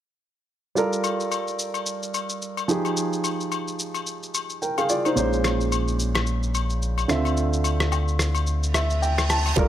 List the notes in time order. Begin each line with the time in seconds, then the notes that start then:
0.75 G3 F4 A4 A#4, shaker
0.93 shaker
1.04 high agogo, shaker
1.20 shaker
1.31 high agogo, shaker
1.47 shaker
1.59 shaker
1.74 high agogo, shaker
1.86 shaker
2.03 shaker
2.14 high agogo, shaker
2.29 shaker
2.42 shaker
2.57 high agogo, shaker
2.68 F3 D#4 G4 G#4, shaker
2.85 high agogo, shaker
2.97 shaker
3.13 shaker
3.24 high agogo, shaker
3.40 shaker
3.52 high agogo, shaker
3.68 shaker
3.79 shaker
3.94 high agogo, shaker
4.06 shaker
4.23 shaker
4.34 high agogo, shaker
4.50 shaker
4.62 A#4 G5, shaker
4.78 G#4 F5, high agogo, shaker
4.89 F4 D5, shaker
5.05 D#4 C5, high agogo, shaker
5.16 A#1 A#2 G#3 C#4 C5, shaker
5.33 shaker
5.44 cross-stick, high agogo, shaker
5.60 shaker
5.72 high agogo, shaker
5.88 shaker
5.99 shaker
6.15 cross-stick, high agogo, shaker
6.26 shaker
6.43 shaker
6.54 high agogo, shaker
6.70 shaker
6.82 shaker
6.98 high agogo, shaker
7.08 D2 D3 C4 F4 E5, cross-stick, shaker
7.25 high agogo, shaker
7.37 shaker
7.53 shaker
7.64 high agogo, shaker
7.80 cross-stick, shaker
7.92 high agogo, low woodblock, shaker
8.08 shaker
8.19 cross-stick, shaker
8.35 high agogo, shaker
8.47 reverse cymbal, shaker
8.63 shaker
8.74 E5, cross-stick, high agogo, shaker
8.90 shaker
9.02 G5, low woodblock, shaker
9.18 cross-stick, high agogo, shaker
9.30 A5, cross-stick, shaker
9.46 high agogo, shaker
9.56 G1 G3 A#3 D4 F4 A4 A#4 A5, kick, impact, shaker